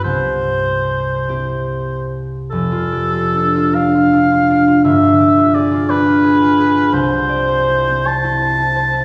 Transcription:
<<
  \new Staff \with { instrumentName = "Oboe" } { \time 6/8 \key c \major \tempo 4. = 53 c''2~ c''8 r8 | a'4. f''4. | e''4 d''8 b'4. | c''4. a''4. | }
  \new Staff \with { instrumentName = "Harp" } { \time 6/8 \key c \major <c, g'>4. <c' e' g'>4. | f,,16 f'16 g'16 f'16 d'16 f'16 d'16 f'16 d'16 f'16 d'16 f'16 | g,,16 f'16 g'16 f'16 aes'16 f'16 d'16 f'16 aes'16 f'16 aes'16 f'16 | c,16 c''16 d''16 c''16 e'16 c'16 c''16 e'16 c''16 e'16 c''16 e'16 | }
>>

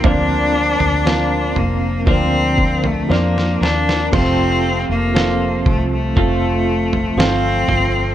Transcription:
<<
  \new Staff \with { instrumentName = "Clean electric guitar" } { \time 4/4 \key bes \major \tempo 4 = 59 <d f c' d' bes'>8 <c' d' bes'>8 <f c' d' bes'>4 <d f c' d' bes'>4 <f c' d' bes'>8 <c' d' bes'>8 | <f c' f' a'>8 <c' f' a'>8 <f c' f' a'>4 <f c' f' a'>4 <f c' f' a'>8 <c' f' a'>8 | }
  \new Staff \with { instrumentName = "Grand piano" } { \time 4/4 \key bes \major <f bes c' d'>4 <f bes c' f'>4 <f bes c' d'>4 <f bes c' d'>4 | <f a c' f'>4 <f c' f' a'>4 <f a c' f'>4 <f a c' f'>4 | }
  \new Staff \with { instrumentName = "Grand piano" } { \clef bass \time 4/4 \key bes \major d4. r2 r8 | c4. r2 r8 | }
  \new Staff \with { instrumentName = "Cello" } { \time 4/4 \key bes \major d'4. bes8 c'8. a16 bes8 d'8 | c'8. bes8. a16 a4~ a16 c'4 | }
  \new Staff \with { instrumentName = "Fingered electric bass" } { \clef bass \time 4/4 \key bes \major d,8. d,8. f,,8 d,4 f,8 ees,8 | f,,8. f,,8. c,8 f,,4 g,,8 g,,8 | }
  \new DrumStaff \with { instrumentName = "Drums" } \drummode { \time 4/4 <bd tomfh>8. tomfh16 sn8 tomfh8 <bd tomfh>8 bd16 tomfh16 sn16 sn16 sn16 sn16 | <cymc bd tomfh>4 sn8 <bd tomfh>8 <bd tomfh>8. tomfh16 sn8 tomfh8 | }
>>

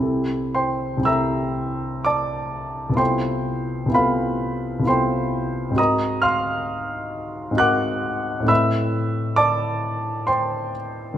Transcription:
\new Staff \with { instrumentName = "Grand piano" } { \time 3/4 \key f \major \tempo 4 = 65 << { r8 <c'' g'' c'''>8 <e'' bes'' e'''>4 <d'' a'' d'''>4 | <c'' g'' c'''>4 <b' f'' b''>4 <c'' g'' c'''>4 | <ees'' bes'' ees'''>8 <f'' c''' f'''>4. <ges'' d''' ges'''>4 | <e'' b'' e'''>4 <d'' a'' d'''>4 <c'' g'' c'''>8 r8 | } \\ { <c, c' e' g' a'>4 <c, c' e' g' a'>2 | <c, b e' f' a'>4 <c, b e' f' a'>4 <c, b e' f' a'>4 | <aes, c' ees' ges' bes'>2 <aes, c' ees' ges' bes'>4 | <a, a c' e' b'>2. | } >> }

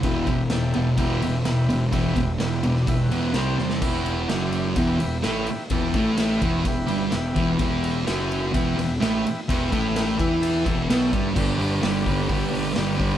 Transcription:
<<
  \new Staff \with { instrumentName = "Transistor combo organ" } { \time 4/4 \key e \minor \tempo 4 = 127 << { r1 | r4. d''8 e''16 fis''8. g''8 a''8 | r1 | r1 |
r1 | r1 | r1 | } \\ { <e' g' b'>4 <e' g' a'>4 <e' g' b'>4 <e' g' b'>4 | <e' g' b'>4 <e' g' b'>4 <e' g' b'>4 <c' g' c''>4 | <e' g' b'>4 <e' d'' g''>4 <e' g' b'>4 <e' g' b'>4 | <e' g' a'>4 <e' g' b'>4 <e' g' b'>4 <e' g' b'>4 |
<e' g' b'>4 <e' b' g''>4 <e' g' b'>4 <e' g' b'>4 | <e' g' b'>4 <e' g' b'>4 <e' g' a'>4 <e' g' a'>4 | <d' g' b'>4 <d' g' b'>4 <d' g' b'>4 <d' g' b'>4 | } >> }
  \new Staff \with { instrumentName = "Distorted electric guitar" } { \clef bass \time 4/4 \key e \minor <e, b, e>8 <e, b,>8 <e, b,>8 <e, b,>8 <e, b, e>8 <e, b,>8 <e, b,>8 <e, b,>8 | <e, b, e>8 <e, b,>8 <e, b,>8 <e, b,>8 <e, b,>8 <e, b, e>8 <c g c'>8 <c g>8 | <e, e>4 <fis, fis>4 <e, e>8 e,8 <a, a>8 r8 | <e, e>8 <a, a>4 <e, e>8 e,8 <g, g>8 e,8 <e, e>8 |
<e, e>4 <fis, fis>4 <e, e>8 e,8 <a, a>8 r8 | <e, e>8 <a, a>4 <e e'>4 <e, e>8 <b, b>8 <g, g>8 | <g, d g>8 <d g>8 <g, d g>8 <d g>8 <g, d g>8 <d g>8 <g, d g>8 <d g>8 | }
  \new Staff \with { instrumentName = "Picked electric bass" } { \clef bass \time 4/4 \key e \minor e,,8 e,,8 e,,8 e,,8 e,,4 e,,8 e,,8 | e,,8 e,,8 e,,8 e,,8 e,,8 e,8 c,8 e,8 | e,,4 fis,,4 e,,8 e,,8 a,,8 r8 | e,,8 a,,4 e,,8 e,,8 g,,8 e,,8 e,,8 |
e,,4 fis,,4 e,,8 e,,8 a,,8 r8 | e,,8 a,,4 e,4 e,,8 b,,8 g,,8 | g,,8 g,,8 g,,4 g,,4 g,,4 | }
  \new DrumStaff \with { instrumentName = "Drums" } \drummode { \time 4/4 <bd cymr>8 <bd cymr>8 <cymr sn>8 cymr8 <bd cymr>8 cymr8 <cymr sn>8 cymr8 | <bd cymr>8 <bd cymr>8 <cymr sn>8 cymr16 sn16 <bd cymr>8 cymr8 <cymr sn>8 sn16 sn16 | <cymc bd>8 cymr8 <cymr sn>8 cymr8 <bd cymr>8 cymr8 <cymr sn>8 cymr8 | <bd cymr>8 <bd cymr>8 <cymr sn>8 <bd cymr>8 <bd cymr>8 cymr8 <cymr sn>8 <bd cymr>8 |
<bd cymr>8 cymr8 <cymr sn>8 cymr8 <bd cymr>8 cymr8 <cymr sn>8 cymr8 | <bd cymr>8 <bd cymr>8 <cymr sn>8 <bd cymr>8 cymr8 <bd cymr>8 <cymr sn>8 <bd cymr>8 | <cymc bd>8 hho8 <hho sn>8 <hho bd>8 <hho bd>8 hho8 <hho sn>8 <hho bd>8 | }
>>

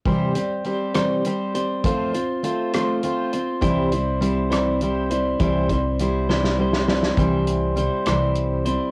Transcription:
<<
  \new Staff \with { instrumentName = "Steel-string acoustic guitar" } { \time 6/8 \key c \major \tempo 4. = 67 <c e g c' g' c''>8 <g c' g' c''>8 <g c' g' c''>8 <c e g c' g' c''>8 <g c' g' c''>8 <g c' g' c''>8 | <f a c' f' c''>8 <c' f' c''>8 <a c' f' c''>8 <f a c' f' c''>8 <a c' f' c''>8 <c' f' c''>8 | <c e g c' e' c''>8 <g c' e' c''>8 <g c' e' c''>8 <c e g c' e' c''>8 <g c' e' c''>8 <g c' e' c''>8 | <c e g c' e' c''>8 <g c' e' c''>8 <g c' e' c''>8 <c e g c' e' c''>8 <g c' e' c''>8 <g c' e' c''>8 |
<c e g c' e' c''>4 <g c' e' c''>8 <c e g c' e' c''>4 <g c' e' c''>8 | }
  \new Staff \with { instrumentName = "Upright bass" } { \clef bass \time 6/8 \key c \major r2. | r2. | c,2. | c,2. |
c,4. c,4. | }
  \new DrumStaff \with { instrumentName = "Drums" } \drummode { \time 6/8 <hh bd>8 hh8 hh8 <hh ss>8 hh8 hh8 | <hh bd>8 hh8 hh8 <hh ss>8 hh8 hh8 | <hh bd>8 hh8 hh8 <hh ss>8 hh8 hh8 | <hh bd>8 <hh bd>8 hh8 sn16 sn8 sn16 sn16 sn16 |
<hh bd>8 hh8 hh8 <hh ss>8 hh8 hh8 | }
>>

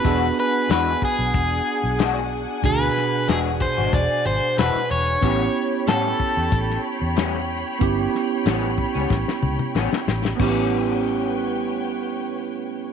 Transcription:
<<
  \new Staff \with { instrumentName = "String section" } { \time 4/4 \key a \mixolydian \tempo 4 = 93 <d' fis'' gis''>1~ | <d' fis'' gis''>1 | <cis'' g'' b''>1~ | <cis'' g'' b''>1 |
<b' cis'' g''>1 | }
  \new Staff \with { instrumentName = "Overdriven electric guitar" } { \time 4/4 \key a \mixolydian b'8 b'8 b'8 gis'2~ gis'8 | b'4 gis'8 c''8 d''8 c''8 b'8 cis''8~ | cis''4 a'4. r4. | r1 |
r1 | }
  \new Staff \with { instrumentName = "Tine electric piano" } { \time 4/4 \key a \mixolydian <b d' fis' gis'>1 | <b, d' fis' gis'>1 | <b cis' e' g'>1 | <b cis' e' g'>1 |
<b cis' e' g'>1 | }
  \new Staff \with { instrumentName = "Clean electric guitar" } { \time 4/4 \key a \mixolydian <e gis d' fis'>16 r8. <e gis d' fis'>16 r4. r16 <e gis d' fis'>16 r8. | r4 <e gis d' fis'>16 r8 <gis d' fis'>16 r4 <e gis d' fis'>16 r8. | <a, g b cis'>16 r8. <a, g b cis'>16 r4. r16 <a, g b cis'>16 r8. | r4 <a, g b cis'>16 r8 <g b cis'>16 r4 <a, g b cis'>16 r8. |
<a, g b cis'>1 | }
  \new Staff \with { instrumentName = "Fingered electric bass" } { \clef bass \time 4/4 \key a \mixolydian e,,8 r8 e,8 r16 b,,16 e,,8 r16 b,,4~ b,,16 | d,8 r8 e,,8. gis,,16 e,,16 r16 gis,,16 r16 e,,16 r16 e,,8 | a,,8 r8 a,8 r16 e,16 a,,8 r16 e,4~ e,16 | g,,8 r8 a,,8. cis,16 a,,16 r16 cis,16 r16 a,,16 r16 a,,8 |
a,,1 | }
  \new DrumStaff \with { instrumentName = "Drums" } \drummode { \time 4/4 <hh bd>4 <hh sn>8 bd8 <hh bd>4 <hh sn>4 | <hh bd>8 sn8 <hh sn>8 bd8 <hh bd>4 <hh sn>4 | <hh bd>4 <hh sn>8 bd8 <hh bd>16 sn8. <hh sn>4 | <hh bd>8 sn8 <hh sn>8 bd8 <bd sn>16 sn16 toml16 toml16 sn16 sn16 sn16 sn16 |
<cymc bd>4 r4 r4 r4 | }
>>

